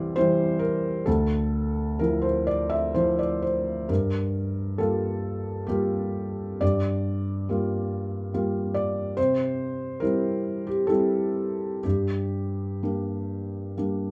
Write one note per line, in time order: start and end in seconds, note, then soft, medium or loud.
0.00 1.09 C2 medium
0.00 0.14 E3 soft
0.00 0.14 G3 soft
0.00 0.14 E4 soft
0.00 0.16 C5 medium
0.00 0.17 D5 medium
0.16 1.02 E3 soft
0.16 1.02 G3 soft
0.16 1.03 E4 soft
0.16 0.60 C5 medium
0.59 1.05 A#4 medium
1.06 1.98 D2 soft
1.06 2.00 A4 medium
1.99 2.91 F3 soft
1.99 2.91 E4 soft
1.99 2.24 A#4 medium
2.22 2.47 C5 medium
2.47 2.71 D5 medium
2.70 2.94 E5 medium
2.94 3.85 F3 soft
2.94 3.85 E4 soft
2.94 3.18 C5 medium
3.19 3.42 D5 medium
3.42 3.89 C5 medium
3.89 4.77 G2 soft
3.89 4.79 A#4 medium
4.78 5.64 G3 soft
4.78 5.64 A#3 soft
4.78 5.64 F4 soft
4.78 5.67 A4 medium
5.67 6.57 G3 soft
5.67 6.57 A#3 soft
5.67 6.58 F4 soft
5.67 6.61 G4 medium
6.61 7.46 G2 soft
6.61 8.73 D5 medium
7.49 8.29 G3 soft
7.49 8.29 A#3 soft
7.49 8.30 F4 soft
8.34 9.14 G3 soft
8.34 9.14 A#3 soft
8.34 9.14 F4 soft
8.74 9.17 D5 medium
9.17 9.99 C3 medium
9.17 10.01 C5 medium
10.00 10.86 G3 soft
10.00 10.86 C4 soft
10.00 10.87 E4 soft
10.00 10.67 A#4 medium
10.67 10.90 G4 medium
10.87 11.80 G3 soft
10.87 11.80 C4 soft
10.87 11.80 E4 soft
10.87 11.83 A4 medium
11.83 12.80 G2 soft
11.83 14.11 G4 soft
12.83 13.74 G3 soft
12.83 13.74 A#3 soft
12.83 13.74 D4 soft
13.77 14.11 G3 soft
13.77 14.11 A#3 soft
13.77 14.11 D4 soft